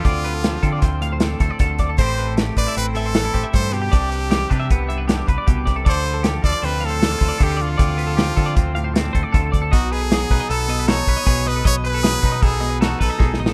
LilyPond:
<<
  \new Staff \with { instrumentName = "Clean electric guitar" } { \time 5/4 \key d \dorian \tempo 4 = 155 d''8 b'16 a'16 g'8 a'16 d''16 c''8 f''16 c''16 a'8 c''16 d''16 a'8 d''16 a'16 | c''8 b'16 a'16 g'8 b'16 e''16 c''8 e''16 c''16 a'8 c''16 e''16 a'8 c''16 g'16 | d''8 b'16 a'16 g'8 b'16 e''16 b'8 e''16 b'16 g'8 b'16 d''16 g'8 d''16 a'16 | d''8 b'16 a'16 g'8 a'16 d''16 c''8 f''16 c''16 a'8 c''16 d''16 a'8 d''16 a'16 |
d''8 b'16 a'16 g'8 a'16 d''16 c''8 f''16 c''16 a'8 c''16 d''16 a'8 d''16 a'16 | dis''8 b'16 a'16 aes'8 b'16 dis''16 a'8 dis''16 b'16 a'8 b'16 dis''16 aes'8 dis''16 a'16 | dis''8 b'16 a'16 aes'8 b'16 dis''16 a'8 dis''16 b'16 a'8 b'16 dis''16 aes'8 dis''16 a'16 | }
  \new Staff \with { instrumentName = "Trumpet" } { \time 5/4 \key d \dorian f'2.~ f'8 r4. | c''4 r8 d''8 b'8 a'4. c''8 g'8~ | g'2.~ g'8 r4. | c''4 r8 d''8 b'8 a'4. g'8 f'8~ |
f'2.~ f'8 r4. | fis'8 aes'4. a'4 des''4. b'8 | des''8 b'4. aes'4 fis'8 a'4 r8 | }
  \new Staff \with { instrumentName = "Clean electric guitar" } { \time 5/4 \key d \dorian << { c'4. c'8 c'4 c'8 a'8 a'4 | <a c' e' g'>4. d'16 e'16 c'4 d'16 e'16 g'4. | d'4. d'8 b4 d'8 b'4. | a'4. f'8 c'4 d'16 f'16 f'8 d'16 f'8. |
c'4. c'8 c'4 c'8 a'8 a'4 | dis'4. dis'8 b4 dis'8 b'8 b'4 | b'4. dis'8 b4 dis'8 dis'8 dis'4 | } \\ { d4 f4. a,4. d4 | a,4 a4. e4. a,8 b,8 | c4 g4. g,4. b,8 c8 | d4 f4. a,4. d4 |
d4 f4. a,4. d4 | b,4 fis4. b,4. b,4 | b,4 fis4. b,4. b,4 | } >> }
  \new Staff \with { instrumentName = "Picked electric bass" } { \clef bass \time 5/4 \key d \dorian d,4. d8 d,4. d,16 r16 d,8 d,8 | a,,4. a,,16 r16 a,,4. a,,16 r16 g,4 | c,4. c8 c,4. c,16 r16 c,8 c,8 | d,4. d,16 r16 d,4. d,16 r16 d,4 |
d,4. d8 d,4. d,16 r16 d,8 d,8 | b,,4. b,,16 r16 b,,4. b,,16 r16 b,,4 | b,,4. b,8 b,,4. b,,16 r16 b,,8 a,,8 | }
  \new DrumStaff \with { instrumentName = "Drums" } \drummode { \time 5/4 <hh bd>8 hh8 <hh sn>8 <hh bd>8 <hh bd sn>8 hh8 <hh sn>8 <hh bd sn>8 <hh bd sn>8 <hh bd sn>8 | <hh bd>8 hh8 <hh sn>8 <hh bd>8 hh8 hh8 <hh sn>8 <hh bd>8 <hh bd sn>8 hh8 | <hh bd>8 hh8 <hh sn>8 <hh bd sn>8 <hh bd>8 hh8 <hh sn>8 <hh bd>8 <hh bd>8 <hh bd sn>8 | <hh bd>8 hh8 <hh sn>8 <hh bd>8 <hh sn>8 hh8 <hh sn>8 <hh bd>8 <hh bd sn>8 hh8 |
<hh bd>8 hh8 <hh sn>8 <hh bd>8 <hh bd>8 hh8 <hh sn>8 <hh bd>8 <hh bd>8 <hh bd>8 | <hh bd>8 hh8 <hh sn>8 <hh bd sn>8 hh8 hh8 <hh sn>8 <hh bd>8 <hh bd sn>8 <hh sn>8 | <hh bd>8 hh8 <hh sn>8 <hh bd sn>8 <hh bd>8 <hh sn>8 <hh sn>8 <hh bd>8 \tuplet 3/2 { <bd sn>8 sn8 sn8 } | }
>>